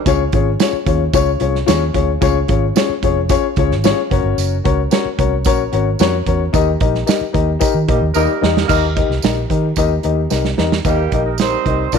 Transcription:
0.06 fingered electric bass C#2, upright piano C#4 F4 G#4 C#5, kick, closed hi-hat, tambourine
0.32 fingered electric bass G#1, upright piano C#4 F4 G#4 C#5, kick, closed hi-hat
0.59 upright piano C#4 F4 G#4 C#5, snare, closed hi-hat, tambourine
0.73 muted fingered electric bass stroke
0.85 fingered electric bass D#2, upright piano C#4 F4 G#4 C#5, kick, closed hi-hat
1.13 fingered electric bass C#2, upright piano C#4 F4 G#4 C#5, kick, closed hi-hat, tambourine
1.40 fingered electric bass C2, upright piano C#4 F4 G#4 C#5, closed hi-hat
1.55 snare
1.66 fingered electric bass D#2, upright piano C#4 F4 G#4 C#5, snare, closed hi-hat, tambourine
1.93 fingered electric bass D2, upright piano C#4 F4 G#4 C#5, kick, closed hi-hat
2.21 fingered electric bass C#2, upright piano C#4 F4 G#4 C#5, kick, closed hi-hat, tambourine
2.48 fingered electric bass G#1, upright piano C#4 F4 G#4 C#5, kick, closed hi-hat
2.75 upright piano C#4 F4 G#4 C#5, snare, closed hi-hat, tambourine
2.89 muted fingered electric bass stroke
3.02 fingered electric bass F1, upright piano C#4 F4 G#4 C#5, kick, closed hi-hat
3.29 upright piano C#4 F4 G#4 C#5, kick, closed hi-hat, tambourine
3.56 fingered electric bass C#2, upright piano C#4 F4 G#4 C#5, kick, closed hi-hat
3.71 fingered electric bass G#1, snare
3.84 upright piano C#4 F4 G#4 C#5, snare, closed hi-hat, tambourine
4.10 fingered electric bass F#1, upright piano C#4 F#4 A#4 C#5, kick, closed hi-hat
4.24 fingered electric bass G1
4.38 fingered electric bass F#1, closed hi-hat, tambourine
4.64 fingered electric bass C#2, upright piano C#4 F#4 A#4 C#5, kick, closed hi-hat
4.91 upright piano C#4 F#4 A#4 C#5, snare, closed hi-hat, tambourine
5.05 muted fingered electric bass stroke
5.18 fingered electric bass C2, upright piano C#4 F#4 A#4 C#5, kick, closed hi-hat
5.45 fingered electric bass A#1, upright piano C#4 F#4 A#4 C#5, kick, closed hi-hat, tambourine
5.72 fingered electric bass G#1, upright piano C#4 F#4 A#4 C#5, closed hi-hat
5.99 fingered electric bass F2, upright piano C#4 F#4 A#4 C#5, snare, closed hi-hat, tambourine
6.26 fingered electric bass E2, upright piano C#4 F#4 A#4 C#5, kick, closed hi-hat
6.53 fingered electric bass D#2, upright piano D#4 G4 A#4 D#5, kick, closed hi-hat, tambourine
6.80 fingered electric bass A#1, upright piano D#4 G4 A#4 D#5, kick, closed hi-hat
6.95 snare
7.06 upright piano D#4 G4 A#4 D#5, snare, closed hi-hat, tambourine
7.21 muted fingered electric bass stroke
7.32 fingered electric bass D#2, upright piano D#4 G4 A#4 D#5, kick, closed hi-hat
7.59 upright piano D#4 G4 A#4 D#5, kick, closed hi-hat, tambourine
7.74 fingered electric bass D#3
7.88 fingered electric bass A#2, horn section D#3 G3 A#3 G4, upright piano D#4 G4 A#4 D#5, kick, closed hi-hat
8.01 fingered electric bass D#2
8.14 fingered electric bass D#2, horn section G3 A#3 D#4 A#4, upright piano D#4 G4 A#4 D#5, tambourine
8.41 fingered electric bass E2, upright piano D#4 G4 A#4 D#5, snare
8.57 snare
8.68 fingered electric bass D#2, horn section G3 A#3 D#4 A#4, upright piano D#4 G4 A#4 D#5, kick, crash, tambourine
8.96 upright piano D#4 G4 A#4 D#5, kick, closed hi-hat
9.10 fingered electric bass C2, snare
9.22 fingered electric bass A#1, upright piano D#4 G4 A#4 D#5, snare, closed hi-hat, tambourine
9.49 fingered electric bass D#3, upright piano D#4 G4 A#4 D#5, kick, closed hi-hat
9.76 fingered electric bass D#2, upright piano D#4 G4 A#4 D#5, kick, closed hi-hat, tambourine
10.03 fingered electric bass D#2, upright piano D#4 G4 A#4 D#5, closed hi-hat
10.30 fingered electric bass C2, upright piano D#4 G4 A#4 D#5, snare, tambourine
10.45 snare
10.57 fingered electric bass E2, upright piano D#4 G4 A#4 D#5, snare
10.72 snare
10.84 fingered electric bass D#2, horn section D#3 G3 A#3 G4, upright piano D#4 G4 A#4 D#5, kick, closed hi-hat, tambourine
11.12 fingered electric bass A#1, upright piano D#4 G4 A#4 D#5, kick, closed hi-hat
11.25 horn section G3 A#3 D#4 A#4
11.38 horn section G3 C4 D#4 C5, upright piano D#4 G4 A#4 C5, snare, closed hi-hat, tambourine
11.66 fingered electric bass C2, upright piano D#4 G4 A#4 D#5, kick, closed hi-hat
11.92 fingered electric bass A#1, horn section F3 A#3 D4 A#4, upright piano D4 F4 A#4 D5, kick, closed hi-hat, tambourine

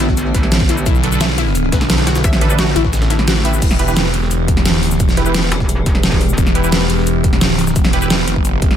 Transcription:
Already playing: wobble bass A1, synth drone D3 B3 A4, synth stab D4 A4 B4
0.00 synth arpeggio sound E4, closed hi-hat
0.09 kick, snare
0.17 closed hi-hat, cabasa
0.35 wobble bass A1, synth arpeggio sound B4, kick, snare, closed hi-hat, cabasa
0.43 snare
0.52 snare, closed hi-hat, cabasa
0.60 kick, snare
0.69 synth arpeggio sound E4, closed hi-hat, cabasa
0.78 cabasa
0.86 detuned saw bass B1, synth arpeggio sound E4, kick, closed hi-hat, cabasa
0.95 cabasa
1.03 synth stab D4 A4 B4, closed hi-hat
1.12 synth stab D4 A4 B4, cabasa
1.21 synth arpeggio sound E5, snare, closed hi-hat, cabasa
1.38 synth arpeggio sound E4, closed hi-hat, open hi-hat
1.47 snare
1.55 closed hi-hat, cabasa
1.72 detuned saw bass B1, synth arpeggio sound B4, kick, snare, closed hi-hat, cabasa
1.81 snare, closed hi-hat
1.90 snare, closed hi-hat, cabasa
1.98 snare, closed hi-hat
2.07 synth arpeggio sound F#4, snare, closed hi-hat, cabasa
2.16 snare, closed hi-hat, cabasa
2.24 wobble bass A1, synth arpeggio sound E5, kick, closed hi-hat, cabasa
2.33 snare, cabasa
2.41 synth stab D4 A4 B4, closed hi-hat
2.50 synth stab D4 A4 B4, cabasa
2.59 synth arpeggio sound F#4, snare, closed hi-hat, cabasa
2.76 detuned saw bass A1, synth arpeggio sound E4, closed hi-hat, cabasa
2.85 kick, snare
2.93 snare, closed hi-hat, cabasa
3.02 snare, closed hi-hat
3.10 synth arpeggio sound E4, snare, closed hi-hat, cabasa
3.19 snare
3.28 synth arpeggio sound F#4, snare, closed hi-hat, cabasa
3.45 synth stab E4 G4 B4, synth arpeggio sound E5, closed hi-hat, open hi-hat, cabasa
3.54 cabasa
3.62 detuned saw bass E1, synth drone E3 B3 G4, kick, closed hi-hat, crash, cabasa
3.71 snare, cabasa
3.79 synth stab E4 G4 B4, closed hi-hat
3.88 synth stab E4 G4 B4, cabasa
3.97 snare, closed hi-hat, cabasa
4.14 detuned saw bass E1, closed hi-hat, open hi-hat
4.22 snare
4.31 closed hi-hat, cabasa
4.48 kick, closed hi-hat, cabasa
4.57 snare
4.65 snare, closed hi-hat, cabasa
4.74 detuned saw bass D#1
4.83 snare, closed hi-hat, open hi-hat, cabasa
4.91 snare, cabasa
5.00 detuned saw bass E1, kick, closed hi-hat, cabasa
5.09 snare, cabasa
5.17 synth stab E4 G4 B4, closed hi-hat
5.26 synth stab E4 G4 B4, cabasa
5.34 snare, closed hi-hat, cabasa
5.52 wobble bass E1, closed hi-hat
5.60 kick, snare
5.69 closed hi-hat, cabasa
5.86 wobble bass E1, kick, snare, closed hi-hat, cabasa
5.95 snare
6.03 snare, closed hi-hat, cabasa
6.12 kick, snare
6.21 closed hi-hat, open hi-hat, cabasa
6.29 cabasa
6.38 detuned saw bass E1, kick, closed hi-hat, cabasa
6.47 snare, cabasa
6.55 synth stab E4 G4 B4, closed hi-hat
6.64 synth stab E4 G4 B4, cabasa
6.72 snare, closed hi-hat, cabasa
6.90 detuned saw bass E1, closed hi-hat, open hi-hat
6.98 snare
7.07 closed hi-hat, cabasa
7.24 kick, closed hi-hat, cabasa
7.33 snare
7.41 snare, closed hi-hat, cabasa
7.59 snare, closed hi-hat, open hi-hat, cabasa
7.67 snare, cabasa
7.76 detuned saw bass E1, kick, closed hi-hat, cabasa
7.85 snare, cabasa
7.93 synth stab E4 G4 B4, closed hi-hat
8.02 synth stab E4 G4 B4, cabasa
8.10 snare, closed hi-hat, cabasa
8.28 detuned saw bass F#1, closed hi-hat
8.36 kick
8.45 closed hi-hat, cabasa
8.62 kick, closed hi-hat, cabasa
8.71 snare

